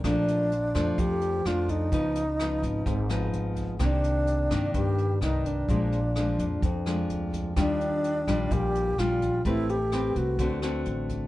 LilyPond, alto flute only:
\new Staff \with { instrumentName = "Alto flute" } { \time 4/4 \key bes \major \tempo 4 = 128 d'2 g'4 f'8 ees'8~ | ees'2~ ees'8 r4. | d'2 g'4 ees'8 d'8~ | d'2~ d'8 r4. |
d'2 g'4 f'4 | e'8 g'4 fis'4 r4. | }